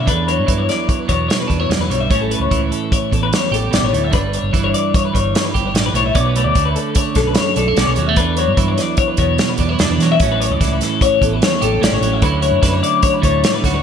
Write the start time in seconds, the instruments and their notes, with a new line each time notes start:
0.06 clean electric guitar E2 D4 B4, fingered electric bass E2, kick, closed hi-hat
0.28 clean electric guitar F#3 C#5, closed hi-hat
0.39 fingered electric bass G2
0.47 fingered electric bass G2, clean electric guitar E3 B4, kick, closed hi-hat
0.58 clean electric guitar C#5
0.69 clean electric guitar D5, snare, closed hi-hat
0.88 clean electric guitar C#5, kick, closed hi-hat
0.99 clean electric guitar B4
1.08 fingered electric bass E2, clean electric guitar B2 C#5, kick, closed hi-hat
1.29 clean electric guitar C#5, snare, closed hi-hat
1.40 clean electric guitar B4
1.48 fingered electric bass E2, clean electric guitar D4, kick, closed hi-hat
1.60 clean electric guitar E4 C#5
1.69 fingered electric bass E2, clean electric guitar F#2 D5, snare, closed hi-hat
1.79 fingered electric bass E2, clean electric guitar B4
1.90 fingered electric bass B1, clean electric guitar G2 C#5, closed hi-hat
2.00 clean electric guitar E5
2.10 fingered electric bass A1, clean electric guitar A2 C#4 C#5, kick, closed hi-hat
2.21 clean electric guitar A4
2.31 clean electric guitar B4, closed hi-hat
2.40 fingered electric bass C#2, clean electric guitar C#5
2.51 fingered electric bass C#2, clean electric guitar E3, kick, closed hi-hat
2.62 clean electric guitar B4
2.71 clean electric guitar A4, closed hi-hat
2.92 clean electric guitar C#5, kick, closed hi-hat
3.11 fingered electric bass A1, clean electric guitar E2 A4, kick, closed hi-hat
3.23 clean electric guitar B4
3.33 clean electric guitar C#5, snare, closed hi-hat
3.51 fingered electric bass A1, clean electric guitar G4 A4, closed hi-hat
3.71 fingered electric bass A1, clean electric guitar B2 D5, snare, closed hi-hat
3.83 fingered electric bass A1, clean electric guitar C#5
3.93 fingered electric bass D2, clean electric guitar A2, closed hi-hat
4.04 clean electric guitar E5
4.11 fingered electric bass G1, clean electric guitar G2 D4 B4, kick, closed hi-hat
4.33 clean electric guitar C#5, closed hi-hat
4.42 fingered electric bass G1
4.53 fingered electric bass G1, clean electric guitar E3 B4, kick, closed hi-hat
4.64 clean electric guitar C#5
4.74 clean electric guitar D5, closed hi-hat
4.94 clean electric guitar C#5, kick, closed hi-hat
5.05 clean electric guitar B4
5.13 fingered electric bass G1, clean electric guitar G2 C#5, kick, closed hi-hat
5.35 clean electric guitar C#5, snare, closed hi-hat
5.45 clean electric guitar B4
5.54 fingered electric bass G1, clean electric guitar G4, kick, closed hi-hat
5.66 clean electric guitar C#5
5.74 fingered electric bass A1, clean electric guitar G2 D5, snare, closed hi-hat
5.86 clean electric guitar B4
5.93 fingered electric bass B1, clean electric guitar A2 C#5, closed hi-hat
6.06 clean electric guitar E5
6.14 fingered electric bass B1, clean electric guitar B2 C#4 D5, kick, closed hi-hat
6.26 clean electric guitar B4
6.36 clean electric guitar A3 C#5, closed hi-hat
6.44 fingered electric bass D2, clean electric guitar D5
6.55 fingered electric bass D2, clean electric guitar D3, kick, closed hi-hat
6.65 clean electric guitar B4
6.76 clean electric guitar A4, closed hi-hat
6.95 clean electric guitar C#5, kick, closed hi-hat
7.15 fingered electric bass B1, clean electric guitar F#2 A4, kick, snare, closed hi-hat
7.27 clean electric guitar B4
7.35 clean electric guitar C#5, snare, closed hi-hat
7.56 fingered electric bass B1, clean electric guitar D4 A4, closed hi-hat
7.68 clean electric guitar E4
7.77 fingered electric bass B1, clean electric guitar B2 C#4 D5, snare, closed hi-hat
7.87 fingered electric bass B1, clean electric guitar C#5
7.96 fingered electric bass D#2, clean electric guitar F#3, closed hi-hat
8.07 clean electric guitar A3 E5
8.16 fingered electric bass E2, clean electric guitar E2 D4 B4, kick, closed hi-hat
8.37 clean electric guitar F#3 C#5, closed hi-hat
8.48 fingered electric bass G2
8.57 fingered electric bass G2, clean electric guitar E3 B4, kick, closed hi-hat
8.68 clean electric guitar C#5
8.78 clean electric guitar D5, snare, closed hi-hat
8.97 clean electric guitar C#5, kick, closed hi-hat
9.08 clean electric guitar B4
9.17 fingered electric bass E2, clean electric guitar B2 C#5, kick, closed hi-hat
9.38 clean electric guitar C#5, snare, closed hi-hat
9.49 clean electric guitar B4
9.58 fingered electric bass E2, clean electric guitar D4, kick, closed hi-hat
9.69 clean electric guitar E4 C#5
9.79 clean electric guitar E2 D4 D5, fingered electric bass E2, snare, closed hi-hat
9.90 fingered electric bass E2, clean electric guitar B4
9.98 fingered electric bass E3, clean electric guitar F#3 C#5, snare, closed hi-hat
10.12 clean electric guitar E5
10.20 fingered electric bass A1, clean electric guitar A2 C#4 C#5, kick, closed hi-hat
10.32 clean electric guitar B4
10.40 clean electric guitar C#5, closed hi-hat
10.50 fingered electric bass C#2, clean electric guitar D5
10.61 fingered electric bass C#2, clean electric guitar E3, kick, snare, closed hi-hat
10.72 clean electric guitar B4
10.81 clean electric guitar A4, snare, closed hi-hat
11.01 clean electric guitar C#5, kick, closed hi-hat
11.21 fingered electric bass A1, clean electric guitar E2 A4, kick, closed hi-hat
11.33 clean electric guitar B4
11.42 clean electric guitar C#5, snare, closed hi-hat
11.62 fingered electric bass A1, clean electric guitar G4 A4, closed hi-hat
11.81 fingered electric bass A1, clean electric guitar A2 C#4 D5, snare, closed hi-hat
11.92 fingered electric bass A1, clean electric guitar C#5
12.01 fingered electric bass A1, clean electric guitar F#3, closed hi-hat
12.13 clean electric guitar E5
12.22 fingered electric bass D2, clean electric guitar D2 D3 F#3 C#4 E4 B4, kick, closed hi-hat
12.42 clean electric guitar F#3 C#5, closed hi-hat
12.51 fingered electric bass F#2
12.62 fingered electric bass F#2, clean electric guitar D3 B4, kick, snare, closed hi-hat
12.73 clean electric guitar C#5
12.83 clean electric guitar D5, closed hi-hat
13.03 clean electric guitar C#5, kick, closed hi-hat
13.14 clean electric guitar B4
13.22 fingered electric bass D2, clean electric guitar A2 C#5, kick, closed hi-hat
13.44 clean electric guitar C#5, snare, closed hi-hat
13.54 clean electric guitar B4
13.63 fingered electric bass D2, clean electric guitar F#4, kick, snare, closed hi-hat
13.74 clean electric guitar C#5